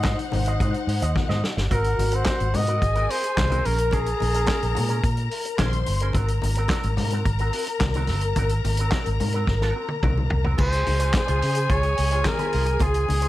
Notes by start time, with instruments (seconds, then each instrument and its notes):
Already playing: fingered electric bass G#2, string section D#4 C5 F#5
0.03 clean electric guitar F#4 C5 D#5, kick, snare, clap, closed hi-hat, high conga
0.19 muted clean electric guitar stroke, closed hi-hat
0.32 fingered electric bass G#1, muted clean electric guitar stroke, open hi-hat, low conga
0.46 clean electric guitar F#4 C5 D#5, closed hi-hat
0.60 fingered electric bass G#2, clean electric guitar F#4 C5 D#5, kick, closed hi-hat, muted conga, low conga
0.74 muted clean electric guitar stroke, closed hi-hat
0.87 fingered electric bass G#2, muted clean electric guitar stroke, open hi-hat
1.02 fingered electric bass D#2, clean electric guitar F#4 C5 D#5, closed hi-hat
1.16 muted clean electric guitar stroke, kick, snare, high conga
1.29 fingered electric bass G#2, clean electric guitar F#4 C5 D#5, snare, high conga
1.43 muted clean electric guitar stroke, snare
1.57 fingered electric bass G1, muted clean electric guitar stroke, snare
1.71 fingered electric bass G#1, clean electric guitar C4 F#4 A#4, string section F#4 F#5, flugelhorn A#4, kick, closed hi-hat, muted conga
1.84 muted clean electric guitar stroke, closed hi-hat
1.98 fingered electric bass G#1, muted clean electric guitar stroke, open hi-hat, muted conga
2.12 clean electric guitar C4 F#4 A#4, flugelhorn C5, closed hi-hat
2.25 clean electric guitar C4 F#4 A#4, kick, snare, clap, closed hi-hat, high conga
2.40 fingered electric bass G#1, muted clean electric guitar stroke, closed hi-hat
2.54 fingered electric bass G#2, flugelhorn D#5, muted clean electric guitar stroke, open hi-hat, low conga
2.67 clean electric guitar C4 F#4 A#4, closed hi-hat
2.82 fingered electric bass G#1, string section G#4 G#5, muted clean electric guitar stroke, kick, closed hi-hat
2.95 clean electric guitar C4 F#4 A#4, closed hi-hat
3.09 clean electric guitar C4 F#4 A#4, flugelhorn C5, open hi-hat
3.23 muted clean electric guitar stroke, closed hi-hat
3.37 fingered electric bass C2, muted clean electric guitar stroke, kick, snare, clap, closed hi-hat, high conga
3.50 clean electric guitar C4 F#4 A#4, closed hi-hat, high conga
3.65 fingered electric bass A#1, clean electric guitar C#4 G#4 A#4, string section A#4 A#5, flugelhorn A#4, open hi-hat
3.78 muted clean electric guitar stroke, closed hi-hat
3.91 clean electric guitar C#4 G#4 A#4, flugelhorn G#4, kick, closed hi-hat, muted conga
4.06 muted clean electric guitar stroke, closed hi-hat
4.20 fingered electric bass A#1, muted clean electric guitar stroke, open hi-hat, muted conga
4.34 clean electric guitar C#4 G#4 A#4, closed hi-hat
4.47 clean electric guitar C#4 G#4 A#4, kick, snare, clap, closed hi-hat, high conga
4.62 fingered electric bass A#1, muted clean electric guitar stroke, closed hi-hat
4.75 fingered electric bass A#2, muted clean electric guitar stroke, open hi-hat, low conga
4.89 clean electric guitar C#4 G#4 A#4, closed hi-hat
5.03 fingered electric bass A#2, muted clean electric guitar stroke, kick, closed hi-hat, muted conga
5.17 muted clean electric guitar stroke, closed hi-hat
5.31 open hi-hat
5.45 muted clean electric guitar stroke, closed hi-hat
5.58 fingered electric bass A#1, clean electric guitar C#4 G#4 A#4, string section C5 C6, kick, snare, clap, closed hi-hat, high conga
5.73 muted clean electric guitar stroke, closed hi-hat, high conga
5.86 fingered electric bass G1, muted clean electric guitar stroke, open hi-hat
6.00 clean electric guitar C#4 G#4 A#4, closed hi-hat
6.13 fingered electric bass G#1, clean electric guitar C4 F#4 A#4, string section A#4 A#5, kick, closed hi-hat, muted conga
6.28 muted clean electric guitar stroke, closed hi-hat
6.42 fingered electric bass G#1, muted clean electric guitar stroke, open hi-hat, muted conga
6.55 clean electric guitar C4 F#4 A#4, closed hi-hat
6.68 clean electric guitar C4, kick, snare, clap, closed hi-hat, high conga
6.72 clean electric guitar F#4 A#4
6.83 fingered electric bass G#1, muted clean electric guitar stroke, closed hi-hat
6.97 fingered electric bass G#2, muted clean electric guitar stroke, open hi-hat, low conga
7.10 clean electric guitar C4 F#4 A#4, closed hi-hat
7.25 fingered electric bass G#1, muted clean electric guitar stroke, kick, closed hi-hat, muted conga
7.39 clean electric guitar C4 F#4 A#4, closed hi-hat
7.53 clean electric guitar C4 F#4 A#4, open hi-hat
7.67 muted clean electric guitar stroke, closed hi-hat
7.80 fingered electric bass C2, muted clean electric guitar stroke, kick, snare, clap, closed hi-hat, high conga
7.94 clean electric guitar C4 F#4 A#4, closed hi-hat, high conga
8.07 fingered electric bass G1, clean electric guitar C4 F#4 A#4, snare, open hi-hat
8.21 muted clean electric guitar stroke, closed hi-hat
8.36 fingered electric bass G#1, clean electric guitar C4 F#4 A#4, kick, closed hi-hat, muted conga
8.49 muted clean electric guitar stroke, closed hi-hat
8.65 fingered electric bass G#1, muted clean electric guitar stroke, open hi-hat, muted conga
8.77 clean electric guitar C4 F#4 A#4, closed hi-hat
8.91 clean electric guitar C4 F#4 A#4, kick, snare, clap, closed hi-hat, high conga
9.06 fingered electric bass G#1, muted clean electric guitar stroke, closed hi-hat
9.20 fingered electric bass G#2, muted clean electric guitar stroke, open hi-hat, low conga
9.32 clean electric guitar C4 F#4 A#4, closed hi-hat
9.47 fingered electric bass G#1, kick, snare, muted conga
9.61 clean electric guitar C4 F#4 A#4, snare
9.76 clean electric guitar C4 F#4 A#4
9.89 muted clean electric guitar stroke, high tom
10.03 fingered electric bass C2, clean electric guitar C4 F#4 A#4, kick, mid tom, high conga
10.17 muted clean electric guitar stroke, high conga
10.30 fingered electric bass C2, muted clean electric guitar stroke, floor tom
10.45 clean electric guitar C4 F#4 A#4, floor tom
10.58 fingered electric bass C#2, clean electric guitar F4 G#4 C5, string section G#4 G#5, flugelhorn C5, kick, crash, muted conga
10.72 closed hi-hat
10.86 fingered electric bass C#2, muted clean electric guitar stroke, open hi-hat, muted conga
10.99 clean electric guitar F4 G#4 C5, closed hi-hat
11.13 flugelhorn C5, muted clean electric guitar stroke, kick, snare, clap, closed hi-hat, high conga
11.27 fingered electric bass C#2, clean electric guitar F4 G#4 C5, closed hi-hat
11.42 fingered electric bass C#3, muted clean electric guitar stroke, open hi-hat
11.55 muted clean electric guitar stroke, closed hi-hat
11.69 fingered electric bass C#2, clean electric guitar F4 G#4 C5, flugelhorn C#5, kick, closed hi-hat
11.83 muted clean electric guitar stroke, closed hi-hat
11.97 fingered electric bass C#2, muted clean electric guitar stroke, open hi-hat
12.11 clean electric guitar F4 G#4 C5, closed hi-hat
12.25 flugelhorn A#4, muted clean electric guitar stroke, kick, snare, clap, closed hi-hat, high conga
12.39 clean electric guitar F4 G#4 C5, closed hi-hat, high conga
12.52 fingered electric bass C2, clean electric guitar F4 G#4 C5, open hi-hat
12.66 muted clean electric guitar stroke, closed hi-hat
12.80 fingered electric bass C#2, clean electric guitar F4 G#4 C5, flugelhorn G#4, kick, closed hi-hat, muted conga
12.94 closed hi-hat
13.08 fingered electric bass C#2, muted clean electric guitar stroke, open hi-hat, muted conga
13.22 clean electric guitar F4 G#4 C5, closed hi-hat